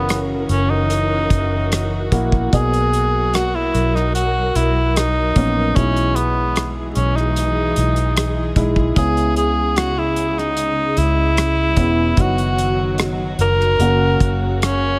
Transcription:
Already playing: F#1 C#3 E3 B3 C#4 E4 F#4 A#4
0.09 cross-stick, closed hi-hat
0.49 F#1 C#4, closed hi-hat
0.70 D#4
0.90 closed hi-hat
1.30 F#1, kick, closed hi-hat
1.72 cross-stick, closed hi-hat
2.12 A#1 A#3 E4 F#4, kick, closed hi-hat
2.32 kick
2.52 B1 B2 F#3 A#3 B3 G#4 A#4 D#5, kick, closed hi-hat
2.73 closed hi-hat
2.93 closed hi-hat
3.34 F#4, cross-stick, closed hi-hat
3.55 E4
3.74 B1, closed hi-hat
3.95 D#4, cross-stick
4.15 F#4, closed hi-hat
4.55 B1 E4, closed hi-hat
4.96 D#4, cross-stick, closed hi-hat
5.36 A#1 A#3 B3 C#4, kick, closed hi-hat
5.76 B1 B2 E3 G#3 C#4 D#4 E4 G#4, kick, closed hi-hat
5.96 closed hi-hat
6.16 B3, closed hi-hat
6.56 cross-stick, closed hi-hat
6.95 B1 C#4, closed hi-hat
7.16 D#4, cross-stick
7.36 closed hi-hat
7.76 B1, closed hi-hat
7.96 closed hi-hat
8.17 cross-stick, closed hi-hat
8.56 B1 G#3 D#4 E4, kick, closed hi-hat
8.76 kick
8.96 C#2 C#3 G#3 B3 C#4 E4 G#4, kick, closed hi-hat
9.17 closed hi-hat
9.36 G#4, closed hi-hat
9.76 F#4, cross-stick, closed hi-hat
9.98 E4
10.16 closed hi-hat
10.37 D#4, cross-stick
10.57 closed hi-hat
10.97 C#2 E4, closed hi-hat
11.37 cross-stick, closed hi-hat
11.76 E1 B3 C#4 E4, kick, closed hi-hat
12.17 F#1 D#3 F#3 B3 D#4 F#4, kick, closed hi-hat
12.38 closed hi-hat
12.58 closed hi-hat
12.98 cross-stick, closed hi-hat
13.38 F#1 A#4, closed hi-hat
13.61 cross-stick
13.78 F#1 C#3 F#3 A#3 C#4 F#4, closed hi-hat
14.20 F#1, kick, closed hi-hat
14.62 C#4, cross-stick, closed hi-hat

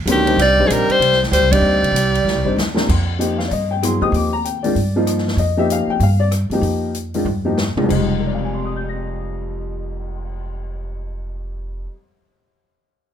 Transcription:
0.06 D2 D#3 F#3 B3 C#4 D4 B4, hi-hat pedal, ride
0.12 G4
0.27 G3 C4 D4 D#4 C5, ride
0.37 C2 G3, snare, ride
0.42 D5
0.58 G3 C4 D4 D#4 C5, kick
0.66 A#1 F3 G#4
0.70 G3 A#4, hi-hat pedal, ride
0.88 G3 C5, muted upright bass stroke, ride
0.99 C2, ride
1.12 snare
1.23 snare
1.31 D2 G3 C5, hi-hat pedal, ride
1.41 C2
1.51 G1 G3 C4 D4 D#4 C5 D5, kick, ride
1.61 D#2
1.72 D2
1.83 C2, ride
1.92 C2
1.96 hi-hat pedal, ride
2.15 ride
2.25 D2, snare
2.35 C2
2.45 G1 G3 C4 D4 D#4 C5
2.56 D#2, snare, hi-hat pedal
2.74 D#2 F3 A#3 C4 D4 A#4, snare
2.89 F2, kick, crash
3.19 F3 A#3 D#4 G4, closed hi-hat
3.38 F5, snare
3.48 G2 D5, open hi-hat
3.53 D#5
3.71 G5
3.83 F#3 B3 E4 G#4 C6, cross-stick, closed hi-hat
4.01 E2 F3 A#3 D#4 G4 D#6
4.12 D#2 D6, open hi-hat
4.33 A#5
4.45 G5, closed hi-hat
4.63 D#3 G#3 D4 F4 D5, open hi-hat
4.75 G2, open hi-hat
4.96 F3 A#3 D#4 F4
5.07 cross-stick, closed hi-hat
5.18 snare
5.28 snare
5.37 F2 D#5, open hi-hat
5.57 F3 A#3 D#4 G4 E5
5.70 F5, closed hi-hat
5.87 G5, muted upright bass stroke
6.00 G2 F5, open hi-hat
6.20 D5
6.31 cross-stick, closed hi-hat
6.50 G2 F3 A#3 D#4 G4, open hi-hat
6.61 F2, open hi-hat
6.95 closed hi-hat
7.14 D#3 G#3 D4 F4, open hi-hat
7.25 G2, floor tom
7.45 F3 A#3 D#4 G4
7.58 snare
7.75 D#3 G#3 D4 F4, muted upright bass stroke, mid tom
7.84 F2 F3
7.89 F1 G#3 D#4, kick, crash
7.96 G3
8.09 cymbal swell
8.19 A#4
8.27 D5
8.35 F5
8.45 G#5
8.54 C6
8.65 D#6
8.76 G6
8.89 A#6

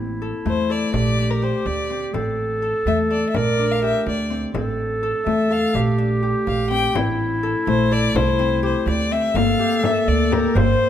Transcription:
Already playing: A1 A#3 C4 D#4 E4 G4
0.22 A4
0.45 E2 A3 C5, frame drum
0.70 A4 D5, frame drum
0.93 A#1 G4 D5, frame drum
1.18 D4
1.30 A#4
1.42 G4 C5
1.66 D2 D5, frame drum
1.90 C4, frame drum
2.14 A1 C4 A4, frame drum
2.62 A4
2.86 E2 A3 E5, frame drum
3.10 A4 D5, frame drum
3.29 E5
3.34 A#1 A#4 D5, frame drum
3.58 D4
3.72 F5
3.83 G4 E5
4.06 D2 D5, frame drum
4.30 C4
4.54 A1 C4 A4, frame drum
5.03 A4
5.26 E2 A3 E5, frame drum
5.51 A4 F5, frame drum
5.74 A#1 G4, frame drum
5.98 D4
6.23 G4
6.47 A#1 F5, frame drum
6.70 C4 G5, frame drum
6.95 A1 C4 E4, frame drum
7.43 A4
7.67 A#1 A3 C5, frame drum
7.91 A4 D5
8.14 C2 E4 C5, frame drum
8.39 C4
8.63 G4 C5
8.86 D2 D5, frame drum
9.11 C4 E5
9.34 G1 A#3 A4 F5, frame drum
9.59 G4
9.83 A#3 E5, frame drum
10.08 D2 D5
10.31 G4 A#4, frame drum
10.55 G1 A#3 C5, frame drum

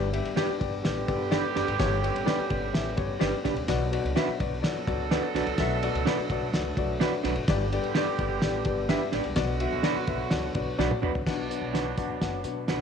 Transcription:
Already playing: G1 G2 G3 B3 D4
0.13 G4 B4 E5, ride
0.25 ride
0.36 D4 G4 B4 D5, snare, ride
0.48 muted upright bass stroke
0.59 G1 G4 B4 D5, kick, ride
0.84 A1 D3 B3 G4 B4 D5, snare, ride
1.08 G1 G4 B4 D5, kick, ride
1.31 D4 G4 B4 D5, snare, ride
1.55 F#1 D4 G4 B4 D5, snare, ride
1.68 G#1, ride
1.79 G1 G2 C#4 G4 B4 C#5, kick, snare, ride
2.02 G4 B4 C#5, ride
2.16 ride
2.26 D4 G4 B4 D5, snare, ride
2.39 muted upright bass stroke
2.49 G1 G4 B4 D5, kick, ride
2.73 A1 G4 B4 E5, snare, ride
2.97 G1 G4 B4 C#5, kick, ride
3.19 G1 D4 G4 B4 D5, snare, ride
3.44 B1 D4 G4 B4 D5, kick, snare, ride
3.56 D2, ride
3.68 B1 B2 F#3 D4 F#4 B4 D5, kick, snare, ride
3.92 F#4 B4 D5, ride
4.04 C#2, ride
4.15 D4 F#4 B4 E5, snare, ride
4.29 muted upright bass stroke
4.39 B1 F#4 B4 D5, kick, ride
4.62 F#3 D4 F#4 A4 B4 D5, snare, ride
4.76 muted upright bass stroke
4.87 C#2 F#4 B4 D5, kick, ride
5.11 D4 F#4 B4 D5, snare, ride
5.35 B1 D4 F#4 B4 D5, snare, ride
5.46 C2, ride
5.58 B1 B2 A3 F#4 B4 E5, kick, snare, ride
5.83 F#4 B4 D5, ride
5.94 C#2, ride
6.05 D4 F#4 B4 D5, snare, ride
6.18 muted upright bass stroke
6.29 B1 F#4 B4 D5, kick, ride
6.53 C#2 F#4 B4 D5, snare, ride
6.77 B1 F#4 B4 D5, kick, ride
7.00 D4 F#4 B4 D5, snare, ride
7.23 B1 D4 F#4 B4 D5, snare, ride
7.36 G#1, ride
7.48 G1 G2 D3 G3 B3 D4 G4 B4 D5, kick, snare, ride
7.72 G4 B4 D5, ride
7.84 ride
7.95 D4 G4 B4 D5, snare, ride
8.07 muted upright bass stroke
8.19 G1 G4 B4 D5, kick, ride
8.42 A1 G4 B4 D5, snare, ride
8.65 G1 G4 B4 D5, kick, ride
8.89 D4 G4 B4 E5, snare, ride
9.12 A1 D4 G4 B4 D5, snare, ride
9.24 C2, ride
9.36 B1 B2 D3 F#3 B3 D4 F#4 B4 D5, kick, snare, ride
9.60 F#4 B4 E5, ride
9.72 C#2
9.83 D4 F#4 B4 D5, snare, ride
9.96 muted upright bass stroke
10.07 B1 F#4 B4 E5, kick, ride
10.31 C#2 F#4 B4 D5, snare, ride
10.55 B1 F#4 B4 D5, kick, ride
10.78 B1 D4 F#4 B4 D5, snare
10.91 high tom
11.02 C2 D4 F#4 B4 D5, mid tom
11.15 floor tom
11.26 B1 B2 F#3 B3 D4 F#4 B4 F#5, kick, snare, crash
11.50 D4 F#4 B4 D5, closed hi-hat
11.61 B1
11.73 D4 F#4 B4 F#5, snare, closed hi-hat
11.97 D2 D4 F#4 B4 F#5, kick, closed hi-hat
12.21 F#1 D4 F#4 B4 F#5, kick, snare, closed hi-hat
12.44 B2 D4 F#4 B4 F#5, closed hi-hat
12.68 B1 D4 F#4 B4 F#5, snare, closed hi-hat

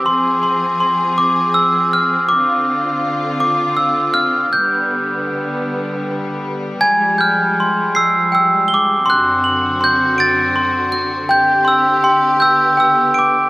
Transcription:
Already playing: C4
0.05 F3 G#4 C6
0.43 C6
0.80 C6
1.18 D6
1.54 E6
1.93 F6
2.29 D3 F4 D6
3.40 D6
3.77 E6
4.14 F6
4.53 D3 G3 B3 G6
6.81 F3 G#3 G#5 G#6
7.18 F6 G6
7.60 C6
7.95 E6 C7
8.32 G5 E6
8.68 G7
8.74 D6
9.06 F#2 D3 C4 F#4 C6
9.10 F#6
9.44 F#7
9.81 C6 G6
10.18 A6 D7
10.56 C6
10.92 C8
11.29 C4 G4 G5 G6
11.65 C6 E6
12.04 G5 C6
12.40 B3 E6 G6
12.77 G5 E6
13.14 D7
13.19 D6

